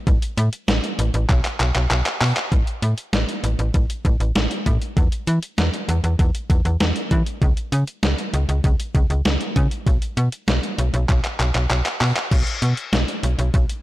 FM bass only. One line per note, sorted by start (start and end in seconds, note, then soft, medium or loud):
0.07 0.19 A1 loud
0.37 0.49 A2 loud
0.68 0.80 A1 loud
0.99 1.11 A1 loud
1.14 1.26 A1 loud
1.29 1.41 B1 loud
1.60 1.72 B1 loud
1.75 1.87 B1 loud
1.91 2.02 B1 loud
2.21 2.33 B2 medium
2.52 2.64 A1 loud
2.82 2.94 A2 medium
3.13 3.25 A1 loud
3.44 3.55 A1 loud
3.59 3.71 A1 loud
3.74 3.86 A1 loud
4.05 4.17 A1 loud
4.20 4.32 A1 medium
4.35 4.47 A1 loud
4.66 4.78 A2 loud
4.97 5.09 E2 loud
5.27 5.39 E3 loud
5.58 5.70 E2 loud
5.89 6.00 E2 loud
6.04 6.16 E2 loud
6.19 6.31 E2 loud
6.50 6.62 E2 loud
6.65 6.77 E2 medium
6.80 6.92 E2 loud
7.11 7.23 E3 loud
7.42 7.53 C#2 loud
7.72 7.84 C#3 loud
8.03 8.15 C#2 medium
8.33 8.45 C#2 loud
8.49 8.61 C#2 loud
8.64 8.76 C#2 loud
8.95 9.06 C#2 loud
9.10 9.22 C#2 medium
9.25 9.37 C#2 medium
9.56 9.68 C#3 loud
9.87 9.98 B1 loud
10.17 10.29 B2 loud
10.48 10.60 B1 loud
10.78 10.90 B1 loud
10.94 11.05 B1 loud
11.09 11.21 B1 loud
11.40 11.51 B1 loud
11.55 11.67 B1 loud
11.70 11.82 B1 loud
12.01 12.13 B2 loud
12.31 12.43 B1 loud
12.62 12.74 B2 loud
12.93 13.04 B1 loud
13.23 13.35 B1 medium
13.39 13.50 B1 loud
13.54 13.66 B1 loud